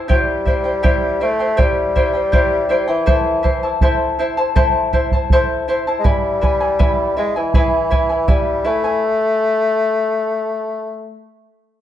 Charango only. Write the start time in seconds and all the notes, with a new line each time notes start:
0.08 E4 G4 C5 E5 G5
0.46 E4 C5 E5 G5
0.64 E4 C5 G5
0.83 E4 G4 C5 E5 G5
1.20 E4 C5 E5 G5
1.39 E4 C5 G5
1.57 E4 G4 C5 E5 G5
1.96 E4 C5 E5 G5
2.13 E4 C5 G5
2.32 E4 G4 C5 E5 G5
2.69 E4 C5 E5 G5
2.88 E4 C5 G5
3.06 E4 A4 C5 E5 A5
3.43 E4 C5 E5 A5
3.63 E4 C5 A5
3.82 E4 A4 C5 E5 A5
4.19 E4 C5 E5 A5
4.37 E4 C5 A5
4.56 E4 A4 C5 E5 A5
4.93 E4 C5 E5 A5
5.13 E4 C5 A5
5.32 E4 A4 C5 E5 A5
5.68 E4 C5 E5 A5
5.87 E4 C5 A5
6.04 E4 B4 E5 G#5
6.41 E4 B4 E5 G#5
6.61 E4 B4 G#5
6.79 E4 B4 E5 G#5
7.17 E4 B4 E5 G#5
7.36 E4 B4 G#5
7.54 E4 G#4 B4 E5 G#5
7.91 E4 B4 E5 G#5
8.09 E4 B4 G#5
8.28 E4 B4 E5 G#5
8.64 E4 B4 E5 G#5
8.84 E4 B4 G#5